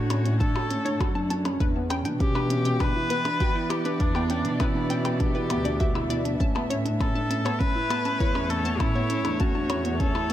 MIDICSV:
0, 0, Header, 1, 8, 480
1, 0, Start_track
1, 0, Tempo, 600000
1, 1283, Time_signature, 4, 2, 24, 8
1, 8263, End_track
2, 0, Start_track
2, 0, Title_t, "Synth arpeggio sound"
2, 0, Program_c, 0, 84
2, 80, Note_on_c, 0, 73, 98
2, 127, Note_off_c, 0, 73, 0
2, 321, Note_on_c, 0, 81, 97
2, 367, Note_off_c, 0, 81, 0
2, 442, Note_on_c, 0, 81, 79
2, 488, Note_off_c, 0, 81, 0
2, 682, Note_on_c, 0, 73, 96
2, 728, Note_off_c, 0, 73, 0
2, 922, Note_on_c, 0, 81, 97
2, 968, Note_off_c, 0, 81, 0
2, 1043, Note_on_c, 0, 81, 75
2, 1088, Note_off_c, 0, 81, 0
2, 1283, Note_on_c, 0, 71, 101
2, 1328, Note_off_c, 0, 71, 0
2, 1521, Note_on_c, 0, 79, 106
2, 1567, Note_off_c, 0, 79, 0
2, 1641, Note_on_c, 0, 79, 75
2, 1687, Note_off_c, 0, 79, 0
2, 1880, Note_on_c, 0, 71, 98
2, 1927, Note_off_c, 0, 71, 0
2, 2121, Note_on_c, 0, 79, 105
2, 2167, Note_off_c, 0, 79, 0
2, 2242, Note_on_c, 0, 79, 80
2, 2288, Note_off_c, 0, 79, 0
2, 2483, Note_on_c, 0, 71, 105
2, 2529, Note_off_c, 0, 71, 0
2, 2722, Note_on_c, 0, 79, 107
2, 2768, Note_off_c, 0, 79, 0
2, 2844, Note_on_c, 0, 79, 75
2, 2889, Note_off_c, 0, 79, 0
2, 3084, Note_on_c, 0, 71, 98
2, 3129, Note_off_c, 0, 71, 0
2, 3325, Note_on_c, 0, 79, 101
2, 3369, Note_off_c, 0, 79, 0
2, 3445, Note_on_c, 0, 79, 75
2, 3490, Note_off_c, 0, 79, 0
2, 3684, Note_on_c, 0, 71, 108
2, 3729, Note_off_c, 0, 71, 0
2, 3922, Note_on_c, 0, 79, 98
2, 3968, Note_off_c, 0, 79, 0
2, 4040, Note_on_c, 0, 79, 79
2, 4087, Note_off_c, 0, 79, 0
2, 4280, Note_on_c, 0, 71, 99
2, 4327, Note_off_c, 0, 71, 0
2, 4519, Note_on_c, 0, 74, 77
2, 4597, Note_off_c, 0, 74, 0
2, 4641, Note_on_c, 0, 76, 106
2, 4718, Note_off_c, 0, 76, 0
2, 4762, Note_on_c, 0, 88, 75
2, 4838, Note_off_c, 0, 88, 0
2, 4881, Note_on_c, 0, 74, 100
2, 4996, Note_off_c, 0, 74, 0
2, 5120, Note_on_c, 0, 81, 105
2, 5167, Note_off_c, 0, 81, 0
2, 5241, Note_on_c, 0, 81, 73
2, 5287, Note_off_c, 0, 81, 0
2, 5362, Note_on_c, 0, 73, 98
2, 5408, Note_off_c, 0, 73, 0
2, 5723, Note_on_c, 0, 81, 95
2, 5768, Note_off_c, 0, 81, 0
2, 5845, Note_on_c, 0, 81, 75
2, 5889, Note_off_c, 0, 81, 0
2, 5962, Note_on_c, 0, 73, 102
2, 6008, Note_off_c, 0, 73, 0
2, 6322, Note_on_c, 0, 81, 109
2, 6368, Note_off_c, 0, 81, 0
2, 6444, Note_on_c, 0, 81, 76
2, 6489, Note_off_c, 0, 81, 0
2, 6563, Note_on_c, 0, 73, 104
2, 6609, Note_off_c, 0, 73, 0
2, 6924, Note_on_c, 0, 81, 112
2, 6969, Note_off_c, 0, 81, 0
2, 7043, Note_on_c, 0, 81, 81
2, 7088, Note_off_c, 0, 81, 0
2, 7163, Note_on_c, 0, 73, 101
2, 7209, Note_off_c, 0, 73, 0
2, 7522, Note_on_c, 0, 81, 104
2, 7568, Note_off_c, 0, 81, 0
2, 7640, Note_on_c, 0, 81, 72
2, 7687, Note_off_c, 0, 81, 0
2, 7759, Note_on_c, 0, 73, 103
2, 7807, Note_off_c, 0, 73, 0
2, 8120, Note_on_c, 0, 81, 95
2, 8167, Note_off_c, 0, 81, 0
2, 8263, End_track
3, 0, Start_track
3, 0, Title_t, "Viola"
3, 0, Program_c, 1, 41
3, 0, Note_on_c, 1, 66, 99
3, 320, Note_off_c, 1, 66, 0
3, 325, Note_on_c, 1, 69, 99
3, 1012, Note_off_c, 1, 69, 0
3, 1759, Note_on_c, 1, 67, 106
3, 2245, Note_on_c, 1, 71, 124
3, 2257, Note_off_c, 1, 67, 0
3, 2958, Note_on_c, 1, 67, 103
3, 2970, Note_off_c, 1, 71, 0
3, 3201, Note_on_c, 1, 62, 107
3, 3213, Note_off_c, 1, 67, 0
3, 3679, Note_on_c, 1, 64, 89
3, 3691, Note_off_c, 1, 62, 0
3, 4161, Note_on_c, 1, 67, 98
3, 4173, Note_off_c, 1, 64, 0
3, 4882, Note_off_c, 1, 67, 0
3, 5599, Note_on_c, 1, 69, 107
3, 6077, Note_on_c, 1, 71, 127
3, 6089, Note_off_c, 1, 69, 0
3, 6797, Note_on_c, 1, 69, 106
3, 6809, Note_off_c, 1, 71, 0
3, 7037, Note_on_c, 1, 64, 111
3, 7049, Note_off_c, 1, 69, 0
3, 7519, Note_on_c, 1, 66, 99
3, 7531, Note_off_c, 1, 64, 0
3, 7993, Note_off_c, 1, 66, 0
3, 7998, Note_on_c, 1, 69, 107
3, 8263, Note_off_c, 1, 69, 0
3, 8263, End_track
4, 0, Start_track
4, 0, Title_t, "Felt piano"
4, 0, Program_c, 2, 0
4, 84, Note_on_c, 2, 61, 80
4, 159, Note_off_c, 2, 61, 0
4, 204, Note_on_c, 2, 61, 73
4, 279, Note_off_c, 2, 61, 0
4, 322, Note_on_c, 2, 62, 89
4, 397, Note_off_c, 2, 62, 0
4, 442, Note_on_c, 2, 66, 73
4, 518, Note_off_c, 2, 66, 0
4, 564, Note_on_c, 2, 61, 80
4, 639, Note_off_c, 2, 61, 0
4, 682, Note_on_c, 2, 62, 75
4, 757, Note_off_c, 2, 62, 0
4, 804, Note_on_c, 2, 66, 84
4, 879, Note_off_c, 2, 66, 0
4, 922, Note_on_c, 2, 62, 78
4, 998, Note_off_c, 2, 62, 0
4, 1044, Note_on_c, 2, 62, 81
4, 1118, Note_off_c, 2, 62, 0
4, 1164, Note_on_c, 2, 61, 79
4, 1238, Note_off_c, 2, 61, 0
4, 1283, Note_on_c, 2, 62, 86
4, 1358, Note_off_c, 2, 62, 0
4, 1403, Note_on_c, 2, 59, 79
4, 1478, Note_off_c, 2, 59, 0
4, 1523, Note_on_c, 2, 61, 82
4, 1598, Note_off_c, 2, 61, 0
4, 1642, Note_on_c, 2, 62, 76
4, 1717, Note_off_c, 2, 62, 0
4, 1764, Note_on_c, 2, 61, 83
4, 1839, Note_off_c, 2, 61, 0
4, 1884, Note_on_c, 2, 62, 80
4, 1959, Note_off_c, 2, 62, 0
4, 2002, Note_on_c, 2, 61, 80
4, 2077, Note_off_c, 2, 61, 0
4, 2123, Note_on_c, 2, 61, 74
4, 2198, Note_off_c, 2, 61, 0
4, 2242, Note_on_c, 2, 62, 89
4, 2317, Note_off_c, 2, 62, 0
4, 2361, Note_on_c, 2, 64, 78
4, 2437, Note_off_c, 2, 64, 0
4, 2482, Note_on_c, 2, 59, 75
4, 2557, Note_off_c, 2, 59, 0
4, 2604, Note_on_c, 2, 62, 81
4, 2679, Note_off_c, 2, 62, 0
4, 2722, Note_on_c, 2, 66, 90
4, 2797, Note_off_c, 2, 66, 0
4, 2841, Note_on_c, 2, 64, 78
4, 2917, Note_off_c, 2, 64, 0
4, 2962, Note_on_c, 2, 64, 80
4, 3037, Note_off_c, 2, 64, 0
4, 3082, Note_on_c, 2, 62, 76
4, 3158, Note_off_c, 2, 62, 0
4, 3200, Note_on_c, 2, 62, 89
4, 3276, Note_off_c, 2, 62, 0
4, 3321, Note_on_c, 2, 59, 78
4, 3397, Note_off_c, 2, 59, 0
4, 3439, Note_on_c, 2, 61, 84
4, 3515, Note_off_c, 2, 61, 0
4, 3559, Note_on_c, 2, 62, 74
4, 3635, Note_off_c, 2, 62, 0
4, 3680, Note_on_c, 2, 61, 81
4, 3756, Note_off_c, 2, 61, 0
4, 3800, Note_on_c, 2, 62, 76
4, 3876, Note_off_c, 2, 62, 0
4, 3920, Note_on_c, 2, 61, 77
4, 3996, Note_off_c, 2, 61, 0
4, 4042, Note_on_c, 2, 61, 68
4, 4117, Note_off_c, 2, 61, 0
4, 4158, Note_on_c, 2, 62, 93
4, 4235, Note_off_c, 2, 62, 0
4, 4281, Note_on_c, 2, 64, 72
4, 4356, Note_off_c, 2, 64, 0
4, 4402, Note_on_c, 2, 59, 74
4, 4477, Note_off_c, 2, 59, 0
4, 4521, Note_on_c, 2, 62, 74
4, 4597, Note_off_c, 2, 62, 0
4, 4642, Note_on_c, 2, 66, 86
4, 4717, Note_off_c, 2, 66, 0
4, 4760, Note_on_c, 2, 64, 77
4, 4836, Note_off_c, 2, 64, 0
4, 4879, Note_on_c, 2, 64, 75
4, 4956, Note_off_c, 2, 64, 0
4, 4998, Note_on_c, 2, 62, 77
4, 5075, Note_off_c, 2, 62, 0
4, 5120, Note_on_c, 2, 61, 90
4, 5196, Note_off_c, 2, 61, 0
4, 5241, Note_on_c, 2, 59, 76
4, 5316, Note_off_c, 2, 59, 0
4, 5360, Note_on_c, 2, 61, 82
4, 5436, Note_off_c, 2, 61, 0
4, 5480, Note_on_c, 2, 62, 77
4, 5556, Note_off_c, 2, 62, 0
4, 5600, Note_on_c, 2, 61, 82
4, 5676, Note_off_c, 2, 61, 0
4, 5719, Note_on_c, 2, 62, 74
4, 5796, Note_off_c, 2, 62, 0
4, 5840, Note_on_c, 2, 61, 77
4, 5916, Note_off_c, 2, 61, 0
4, 5960, Note_on_c, 2, 59, 70
4, 6036, Note_off_c, 2, 59, 0
4, 6081, Note_on_c, 2, 61, 90
4, 6157, Note_off_c, 2, 61, 0
4, 6200, Note_on_c, 2, 64, 77
4, 6276, Note_off_c, 2, 64, 0
4, 6319, Note_on_c, 2, 59, 73
4, 6395, Note_off_c, 2, 59, 0
4, 6440, Note_on_c, 2, 61, 76
4, 6516, Note_off_c, 2, 61, 0
4, 6560, Note_on_c, 2, 64, 89
4, 6636, Note_off_c, 2, 64, 0
4, 6679, Note_on_c, 2, 61, 78
4, 6755, Note_off_c, 2, 61, 0
4, 6802, Note_on_c, 2, 61, 73
4, 6877, Note_off_c, 2, 61, 0
4, 6921, Note_on_c, 2, 59, 80
4, 6996, Note_off_c, 2, 59, 0
4, 7041, Note_on_c, 2, 61, 92
4, 7117, Note_off_c, 2, 61, 0
4, 7160, Note_on_c, 2, 59, 76
4, 7236, Note_off_c, 2, 59, 0
4, 7280, Note_on_c, 2, 61, 79
4, 7356, Note_off_c, 2, 61, 0
4, 7400, Note_on_c, 2, 62, 80
4, 7476, Note_off_c, 2, 62, 0
4, 7521, Note_on_c, 2, 61, 82
4, 7597, Note_off_c, 2, 61, 0
4, 7639, Note_on_c, 2, 62, 80
4, 7715, Note_off_c, 2, 62, 0
4, 7759, Note_on_c, 2, 61, 79
4, 7835, Note_off_c, 2, 61, 0
4, 7878, Note_on_c, 2, 59, 78
4, 7954, Note_off_c, 2, 59, 0
4, 7998, Note_on_c, 2, 61, 97
4, 8074, Note_off_c, 2, 61, 0
4, 8119, Note_on_c, 2, 64, 74
4, 8195, Note_off_c, 2, 64, 0
4, 8239, Note_on_c, 2, 59, 79
4, 8263, Note_off_c, 2, 59, 0
4, 8263, End_track
5, 0, Start_track
5, 0, Title_t, "String quartet"
5, 0, Program_c, 3, 48
5, 0, Note_on_c, 3, 50, 74
5, 0, Note_on_c, 3, 57, 91
5, 0, Note_on_c, 3, 73, 83
5, 0, Note_on_c, 3, 78, 78
5, 1281, Note_off_c, 3, 78, 0
5, 1282, Note_off_c, 3, 50, 0
5, 1283, Note_off_c, 3, 73, 0
5, 1284, Note_off_c, 3, 57, 0
5, 1285, Note_on_c, 3, 52, 90
5, 1541, Note_on_c, 3, 59, 91
5, 1944, Note_on_c, 3, 76, 80
5, 2470, Note_on_c, 3, 74, 82
5, 5121, Note_on_c, 3, 45, 85
5, 5123, Note_off_c, 3, 74, 0
5, 5124, Note_off_c, 3, 52, 0
5, 5658, Note_on_c, 3, 57, 90
5, 6173, Note_on_c, 3, 73, 94
5, 6417, Note_off_c, 3, 59, 0
5, 8263, Note_off_c, 3, 45, 0
5, 8263, Note_off_c, 3, 57, 0
5, 8263, Note_off_c, 3, 73, 0
5, 8263, Note_off_c, 3, 76, 0
5, 8263, End_track
6, 0, Start_track
6, 0, Title_t, "Cello section"
6, 0, Program_c, 4, 48
6, 0, Note_on_c, 4, 45, 99
6, 744, Note_off_c, 4, 45, 0
6, 802, Note_on_c, 4, 42, 88
6, 1224, Note_off_c, 4, 42, 0
6, 1283, Note_on_c, 4, 40, 98
6, 1584, Note_off_c, 4, 40, 0
6, 1644, Note_on_c, 4, 47, 108
6, 2665, Note_off_c, 4, 47, 0
6, 3203, Note_on_c, 4, 40, 98
6, 3505, Note_off_c, 4, 40, 0
6, 3563, Note_on_c, 4, 47, 100
6, 4402, Note_on_c, 4, 38, 102
6, 4585, Note_off_c, 4, 47, 0
6, 4644, Note_on_c, 4, 47, 106
6, 5064, Note_off_c, 4, 38, 0
6, 5065, Note_off_c, 4, 47, 0
6, 5123, Note_on_c, 4, 45, 102
6, 6265, Note_off_c, 4, 45, 0
6, 6563, Note_on_c, 4, 40, 96
6, 6985, Note_off_c, 4, 40, 0
6, 7042, Note_on_c, 4, 45, 106
6, 7344, Note_off_c, 4, 45, 0
6, 7400, Note_on_c, 4, 40, 102
6, 8263, Note_off_c, 4, 40, 0
6, 8263, End_track
7, 0, Start_track
7, 0, Title_t, "Percussion blips"
7, 82, Note_on_c, 9, 77, 69
7, 162, Note_off_c, 9, 77, 0
7, 445, Note_on_c, 9, 77, 63
7, 525, Note_off_c, 9, 77, 0
7, 805, Note_on_c, 9, 77, 69
7, 885, Note_off_c, 9, 77, 0
7, 1162, Note_on_c, 9, 77, 62
7, 1242, Note_off_c, 9, 77, 0
7, 1523, Note_on_c, 9, 77, 65
7, 1603, Note_off_c, 9, 77, 0
7, 1883, Note_on_c, 9, 77, 62
7, 1963, Note_off_c, 9, 77, 0
7, 2242, Note_on_c, 9, 77, 63
7, 2322, Note_off_c, 9, 77, 0
7, 2602, Note_on_c, 9, 77, 63
7, 2682, Note_off_c, 9, 77, 0
7, 2962, Note_on_c, 9, 77, 66
7, 3042, Note_off_c, 9, 77, 0
7, 3319, Note_on_c, 9, 77, 64
7, 3399, Note_off_c, 9, 77, 0
7, 3679, Note_on_c, 9, 77, 65
7, 3759, Note_off_c, 9, 77, 0
7, 4040, Note_on_c, 9, 77, 64
7, 4120, Note_off_c, 9, 77, 0
7, 4401, Note_on_c, 9, 77, 67
7, 4481, Note_off_c, 9, 77, 0
7, 4763, Note_on_c, 9, 77, 67
7, 4843, Note_off_c, 9, 77, 0
7, 5246, Note_on_c, 9, 77, 63
7, 5326, Note_off_c, 9, 77, 0
7, 5604, Note_on_c, 9, 77, 60
7, 5684, Note_off_c, 9, 77, 0
7, 5966, Note_on_c, 9, 77, 64
7, 6046, Note_off_c, 9, 77, 0
7, 6323, Note_on_c, 9, 77, 62
7, 6403, Note_off_c, 9, 77, 0
7, 6682, Note_on_c, 9, 77, 64
7, 6762, Note_off_c, 9, 77, 0
7, 7041, Note_on_c, 9, 77, 65
7, 7121, Note_off_c, 9, 77, 0
7, 7398, Note_on_c, 9, 77, 60
7, 7478, Note_off_c, 9, 77, 0
7, 7758, Note_on_c, 9, 77, 66
7, 7838, Note_off_c, 9, 77, 0
7, 8121, Note_on_c, 9, 77, 58
7, 8201, Note_off_c, 9, 77, 0
7, 8263, End_track
8, 0, Start_track
8, 0, Title_t, "Drums"
8, 82, Note_on_c, 9, 42, 83
8, 162, Note_off_c, 9, 42, 0
8, 204, Note_on_c, 9, 42, 44
8, 284, Note_off_c, 9, 42, 0
8, 323, Note_on_c, 9, 36, 103
8, 326, Note_on_c, 9, 42, 30
8, 403, Note_off_c, 9, 36, 0
8, 406, Note_off_c, 9, 42, 0
8, 564, Note_on_c, 9, 42, 79
8, 644, Note_off_c, 9, 42, 0
8, 686, Note_on_c, 9, 42, 44
8, 766, Note_off_c, 9, 42, 0
8, 804, Note_on_c, 9, 36, 110
8, 805, Note_on_c, 9, 42, 32
8, 884, Note_off_c, 9, 36, 0
8, 885, Note_off_c, 9, 42, 0
8, 1044, Note_on_c, 9, 42, 72
8, 1124, Note_off_c, 9, 42, 0
8, 1162, Note_on_c, 9, 42, 43
8, 1242, Note_off_c, 9, 42, 0
8, 1283, Note_on_c, 9, 36, 110
8, 1284, Note_on_c, 9, 42, 34
8, 1363, Note_off_c, 9, 36, 0
8, 1364, Note_off_c, 9, 42, 0
8, 1523, Note_on_c, 9, 42, 72
8, 1603, Note_off_c, 9, 42, 0
8, 1642, Note_on_c, 9, 42, 41
8, 1722, Note_off_c, 9, 42, 0
8, 1762, Note_on_c, 9, 42, 31
8, 1763, Note_on_c, 9, 36, 112
8, 1842, Note_off_c, 9, 42, 0
8, 1843, Note_off_c, 9, 36, 0
8, 2003, Note_on_c, 9, 42, 80
8, 2083, Note_off_c, 9, 42, 0
8, 2123, Note_on_c, 9, 42, 45
8, 2203, Note_off_c, 9, 42, 0
8, 2242, Note_on_c, 9, 42, 29
8, 2243, Note_on_c, 9, 36, 102
8, 2322, Note_off_c, 9, 42, 0
8, 2323, Note_off_c, 9, 36, 0
8, 2482, Note_on_c, 9, 42, 78
8, 2562, Note_off_c, 9, 42, 0
8, 2602, Note_on_c, 9, 42, 42
8, 2682, Note_off_c, 9, 42, 0
8, 2723, Note_on_c, 9, 36, 109
8, 2724, Note_on_c, 9, 42, 35
8, 2803, Note_off_c, 9, 36, 0
8, 2804, Note_off_c, 9, 42, 0
8, 2962, Note_on_c, 9, 42, 73
8, 3042, Note_off_c, 9, 42, 0
8, 3082, Note_on_c, 9, 42, 40
8, 3162, Note_off_c, 9, 42, 0
8, 3200, Note_on_c, 9, 42, 34
8, 3203, Note_on_c, 9, 36, 107
8, 3280, Note_off_c, 9, 42, 0
8, 3283, Note_off_c, 9, 36, 0
8, 3438, Note_on_c, 9, 42, 71
8, 3518, Note_off_c, 9, 42, 0
8, 3559, Note_on_c, 9, 42, 41
8, 3639, Note_off_c, 9, 42, 0
8, 3679, Note_on_c, 9, 42, 32
8, 3683, Note_on_c, 9, 36, 111
8, 3759, Note_off_c, 9, 42, 0
8, 3763, Note_off_c, 9, 36, 0
8, 3921, Note_on_c, 9, 42, 77
8, 4001, Note_off_c, 9, 42, 0
8, 4040, Note_on_c, 9, 42, 47
8, 4120, Note_off_c, 9, 42, 0
8, 4161, Note_on_c, 9, 42, 29
8, 4163, Note_on_c, 9, 36, 100
8, 4241, Note_off_c, 9, 42, 0
8, 4243, Note_off_c, 9, 36, 0
8, 4401, Note_on_c, 9, 42, 80
8, 4481, Note_off_c, 9, 42, 0
8, 4522, Note_on_c, 9, 42, 43
8, 4602, Note_off_c, 9, 42, 0
8, 4641, Note_on_c, 9, 42, 33
8, 4644, Note_on_c, 9, 36, 111
8, 4721, Note_off_c, 9, 42, 0
8, 4724, Note_off_c, 9, 36, 0
8, 4882, Note_on_c, 9, 42, 75
8, 4962, Note_off_c, 9, 42, 0
8, 5003, Note_on_c, 9, 42, 42
8, 5083, Note_off_c, 9, 42, 0
8, 5123, Note_on_c, 9, 36, 102
8, 5124, Note_on_c, 9, 42, 32
8, 5203, Note_off_c, 9, 36, 0
8, 5204, Note_off_c, 9, 42, 0
8, 5364, Note_on_c, 9, 42, 73
8, 5444, Note_off_c, 9, 42, 0
8, 5485, Note_on_c, 9, 42, 42
8, 5565, Note_off_c, 9, 42, 0
8, 5604, Note_on_c, 9, 36, 102
8, 5604, Note_on_c, 9, 42, 31
8, 5684, Note_off_c, 9, 36, 0
8, 5684, Note_off_c, 9, 42, 0
8, 5845, Note_on_c, 9, 42, 80
8, 5925, Note_off_c, 9, 42, 0
8, 5966, Note_on_c, 9, 42, 43
8, 6046, Note_off_c, 9, 42, 0
8, 6084, Note_on_c, 9, 36, 106
8, 6085, Note_on_c, 9, 42, 30
8, 6164, Note_off_c, 9, 36, 0
8, 6165, Note_off_c, 9, 42, 0
8, 6323, Note_on_c, 9, 42, 72
8, 6403, Note_off_c, 9, 42, 0
8, 6442, Note_on_c, 9, 42, 41
8, 6522, Note_off_c, 9, 42, 0
8, 6563, Note_on_c, 9, 36, 106
8, 6563, Note_on_c, 9, 42, 31
8, 6643, Note_off_c, 9, 36, 0
8, 6643, Note_off_c, 9, 42, 0
8, 6801, Note_on_c, 9, 42, 72
8, 6881, Note_off_c, 9, 42, 0
8, 6922, Note_on_c, 9, 42, 37
8, 7002, Note_off_c, 9, 42, 0
8, 7041, Note_on_c, 9, 42, 30
8, 7042, Note_on_c, 9, 36, 106
8, 7121, Note_off_c, 9, 42, 0
8, 7122, Note_off_c, 9, 36, 0
8, 7279, Note_on_c, 9, 42, 69
8, 7359, Note_off_c, 9, 42, 0
8, 7398, Note_on_c, 9, 42, 39
8, 7478, Note_off_c, 9, 42, 0
8, 7518, Note_on_c, 9, 42, 31
8, 7522, Note_on_c, 9, 36, 109
8, 7598, Note_off_c, 9, 42, 0
8, 7602, Note_off_c, 9, 36, 0
8, 7758, Note_on_c, 9, 42, 72
8, 7838, Note_off_c, 9, 42, 0
8, 7880, Note_on_c, 9, 42, 42
8, 7960, Note_off_c, 9, 42, 0
8, 8000, Note_on_c, 9, 42, 30
8, 8002, Note_on_c, 9, 36, 101
8, 8080, Note_off_c, 9, 42, 0
8, 8082, Note_off_c, 9, 36, 0
8, 8263, End_track
0, 0, End_of_file